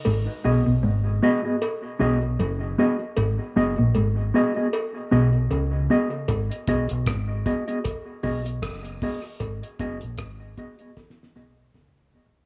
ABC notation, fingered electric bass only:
X:1
M:4/4
L:1/16
Q:"Swing 16ths" 1/4=77
K:G#m
V:1 name="Fingered electric bass" clef=bass
G,,, z B,,, B,,, G,,,2 z4 B,,,2 F,,,2 z2 | G,,, z F,,, A,,, G,,,2 z4 B,,,2 C,,2 z2 | G,,, z B,,, B,,, G,,,2 z4 B,,,2 F,,,2 z2 | G,,, z F,,, A,,, G,,,2 z4 B,,,2 C,,2 z2 |]